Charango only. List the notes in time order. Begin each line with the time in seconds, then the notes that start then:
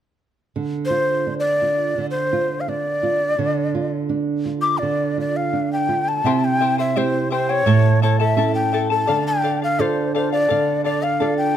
6.25 E4 G4 C5 E5 G5
6.60 E4 C5 E5 G5
6.78 E4 C5 G5
6.96 E4 C5 E5 G5
7.30 E4 C5 E5 G5
7.49 E4 C5 G5
7.66 E4 A4 C#5 E5 A5
8.02 E4 A4 E5 A5
8.20 E4 A4 A5
8.37 E4 A4 E5 A5
8.73 E4 A4 E5 A5
8.90 E4 A4 A5
9.07 A4 D5 F5
9.43 A4 D5 F5
9.62 D5 F5
9.79 A4 D5 F5
10.15 A4 D5 F5
10.32 D5 F5
10.49 A4 D5 F5
10.84 A4 D5 F5
11.03 D5 F5
11.20 A4 D5 F5